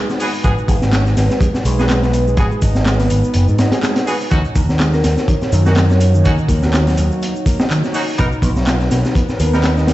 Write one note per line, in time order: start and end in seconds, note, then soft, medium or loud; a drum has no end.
0.00 4.28 G#3 medium
0.00 4.27 D#4 medium
0.00 4.27 F#4 medium
0.00 4.27 B4 medium
0.10 snare soft
0.10 shaker soft
0.20 0.28 B3 loud
0.20 0.28 F#4 medium
0.20 0.28 G#4 loud
0.20 open hi-hat medium
0.20 shaker medium
0.34 shaker soft
0.44 0.56 G#1 loud
0.44 0.52 G#3 medium
0.44 0.52 B3 loud
0.44 0.52 F#4 loud
0.44 0.52 G#4 loud
0.44 kick loud
0.44 closed hi-hat medium
0.44 shaker soft
0.58 shaker soft
0.68 0.80 G#1 loud
0.68 0.76 G#3 loud
0.68 kick loud
0.68 closed hi-hat medium
0.68 open hi-hat medium
0.68 shaker medium
0.82 1.14 G#1 medium
0.82 snare soft
0.82 shaker soft
0.93 1.05 C#4 medium
0.93 snare loud
0.93 clap loud
0.93 closed hi-hat medium
0.93 shaker soft
1.06 snare soft
1.06 shaker soft
1.17 1.28 G#1 medium
1.17 snare medium
1.17 closed hi-hat medium
1.17 open hi-hat medium
1.17 shaker medium
1.30 snare soft
1.30 shaker soft
1.41 1.48 G#3 medium
1.41 kick loud
1.41 closed hi-hat medium
1.41 shaker soft
1.54 snare soft
1.54 shaker soft
1.65 2.35 B1 loud
1.65 2.02 G#3 medium
1.65 closed hi-hat medium
1.65 open hi-hat medium
1.65 shaker medium
1.79 1.85 B3 medium
1.79 1.85 F#4 medium
1.79 1.85 G#4 medium
1.79 snare medium
1.79 shaker soft
1.89 snare loud
1.89 clap loud
1.89 closed hi-hat medium
1.89 shaker soft
2.02 2.26 B3 medium
2.02 snare medium
2.02 shaker soft
2.13 closed hi-hat medium
2.13 open hi-hat medium
2.13 shaker medium
2.27 2.50 G#3 medium
2.27 shaker soft
2.37 2.49 G#1 loud
2.37 2.46 B3 medium
2.37 2.46 F#4 medium
2.37 2.46 G#4 loud
2.37 kick loud
2.37 closed hi-hat medium
2.37 shaker soft
2.51 2.61 G#3 loud
2.51 shaker soft
2.62 2.74 G#1 loud
2.62 2.85 D#4 medium
2.62 kick medium
2.62 closed hi-hat medium
2.62 open hi-hat medium
2.62 shaker medium
2.75 3.08 G#1 medium
2.75 snare medium
2.75 shaker soft
2.86 2.99 G#3 loud
2.86 snare loud
2.86 clap loud
2.86 closed hi-hat medium
2.86 shaker soft
2.99 3.47 B3 medium
2.99 snare medium
2.99 open hi-hat soft
2.99 shaker soft
3.10 3.22 G#1 medium
3.10 closed hi-hat medium
3.10 open hi-hat medium
3.10 shaker medium
3.24 shaker soft
3.34 3.46 F#1 medium
3.34 closed hi-hat medium
3.34 shaker soft
3.48 3.57 G#2 medium
3.48 shaker soft
3.58 3.70 G#2 medium
3.58 3.71 D#4 medium
3.58 snare loud
3.58 closed hi-hat medium
3.58 open hi-hat medium
3.58 shaker medium
3.72 3.78 G#4 medium
3.72 snare loud
3.72 closed hi-hat medium
3.72 shaker soft
3.83 3.95 G#3 loud
3.83 snare loud
3.83 clap loud
3.83 closed hi-hat medium
3.83 shaker soft
3.96 snare loud
3.96 closed hi-hat medium
3.96 shaker soft
4.07 4.15 B3 medium
4.07 4.15 F#4 medium
4.07 4.15 G#4 loud
4.07 open hi-hat medium
4.07 shaker medium
4.21 shaker soft
4.31 4.43 D#2 loud
4.31 4.39 D#3 medium
4.31 8.15 A#3 medium
4.31 4.39 C#4 loud
4.31 4.39 D#4 medium
4.31 9.94 D#4 medium
4.31 4.39 F#4 loud
4.31 9.94 F#4 medium
4.31 8.15 C#5 medium
4.31 kick loud
4.31 closed hi-hat medium
4.31 shaker soft
4.45 shaker soft
4.56 4.67 D#2 loud
4.56 4.63 D#3 loud
4.56 kick medium
4.56 closed hi-hat medium
4.56 open hi-hat medium
4.56 shaker medium
4.69 5.01 D#2 medium
4.69 snare soft
4.69 shaker soft
4.80 4.92 G#3 medium
4.80 snare loud
4.80 clap loud
4.80 closed hi-hat medium
4.80 shaker soft
4.94 5.00 A#4 medium
4.94 snare soft
4.94 shaker soft
5.04 5.16 D#2 medium
5.04 5.13 A#4 medium
5.04 snare medium
5.04 closed hi-hat medium
5.04 open hi-hat medium
5.04 shaker medium
5.17 snare soft
5.17 shaker soft
5.28 5.36 D#3 medium
5.28 kick loud
5.28 closed hi-hat medium
5.28 shaker soft
5.42 snare soft
5.42 shaker soft
5.52 6.22 F#2 loud
5.52 5.89 D#3 medium
5.52 closed hi-hat medium
5.52 open hi-hat medium
5.52 shaker medium
5.66 5.72 C#4 medium
5.66 5.72 D#4 medium
5.66 5.72 F#4 medium
5.66 5.73 A#4 medium
5.66 snare soft
5.66 shaker soft
5.76 snare loud
5.76 clap loud
5.76 closed hi-hat medium
5.76 shaker soft
5.90 6.13 F#3 medium
5.90 snare medium
5.90 shaker soft
6.00 closed hi-hat medium
6.00 open hi-hat medium
6.00 shaker medium
6.14 6.37 D#3 medium
6.14 shaker soft
6.25 6.37 D#2 loud
6.25 6.33 C#4 medium
6.25 6.33 D#4 medium
6.25 6.33 F#4 loud
6.25 kick loud
6.25 closed hi-hat medium
6.25 shaker soft
6.38 6.48 D#3 loud
6.38 shaker soft
6.48 6.60 D#2 loud
6.48 6.72 A#3 medium
6.48 kick loud
6.48 closed hi-hat medium
6.48 open hi-hat medium
6.48 shaker medium
6.63 6.95 D#2 medium
6.63 6.70 F#4 medium
6.63 snare medium
6.63 shaker soft
6.74 6.86 D#3 loud
6.74 6.82 F#4 medium
6.74 snare loud
6.74 clap loud
6.74 closed hi-hat medium
6.74 shaker soft
6.87 7.34 F#3 medium
6.87 snare medium
6.87 open hi-hat medium
6.87 shaker soft
6.97 7.09 D#2 medium
6.97 closed hi-hat medium
6.97 open hi-hat medium
6.97 shaker medium
7.11 shaker soft
7.22 closed hi-hat medium
7.22 shaker soft
7.36 shaker soft
7.46 7.58 A#3 medium
7.46 kick loud
7.46 closed hi-hat medium
7.46 open hi-hat medium
7.46 shaker medium
7.59 7.65 D#4 medium
7.59 snare loud
7.59 shaker soft
7.70 7.82 D#3 loud
7.70 clap loud
7.70 closed hi-hat medium
7.70 shaker soft
7.84 snare soft
7.84 shaker soft
7.94 8.02 C#4 medium
7.94 8.02 D#4 medium
7.94 8.02 F#4 loud
7.94 open hi-hat medium
7.94 shaker medium
8.08 shaker soft
8.18 8.30 B1 loud
8.18 8.26 B3 medium
8.18 8.26 B3 loud
8.18 8.26 D#4 medium
8.18 9.94 A#4 medium
8.18 8.26 A#4 loud
8.18 9.94 B4 medium
8.18 kick loud
8.18 closed hi-hat medium
8.18 shaker soft
8.32 shaker soft
8.42 8.54 B1 loud
8.42 8.50 B3 loud
8.42 kick loud
8.42 closed hi-hat medium
8.42 open hi-hat medium
8.42 shaker medium
8.56 8.89 B1 medium
8.56 snare soft
8.56 shaker soft
8.67 8.79 F4 medium
8.67 snare loud
8.67 clap loud
8.67 closed hi-hat medium
8.67 shaker soft
8.80 snare soft
8.80 shaker soft
8.91 9.03 B1 medium
8.91 snare medium
8.91 closed hi-hat medium
8.91 open hi-hat medium
8.91 shaker medium
9.05 snare medium
9.05 shaker soft
9.15 9.23 B3 medium
9.15 kick loud
9.15 closed hi-hat medium
9.15 shaker soft
9.29 snare soft
9.29 shaker soft
9.40 9.94 D#2 loud
9.40 9.76 B3 medium
9.40 closed hi-hat medium
9.40 open hi-hat medium
9.40 shaker medium
9.53 9.59 B3 medium
9.53 9.59 D#4 medium
9.53 9.59 A#4 medium
9.53 snare medium
9.53 shaker soft
9.63 snare loud
9.63 clap loud
9.63 closed hi-hat medium
9.63 shaker soft
9.77 9.94 D#4 medium
9.77 snare soft
9.77 shaker soft
9.87 snare loud
9.87 closed hi-hat medium
9.87 open hi-hat medium
9.87 shaker medium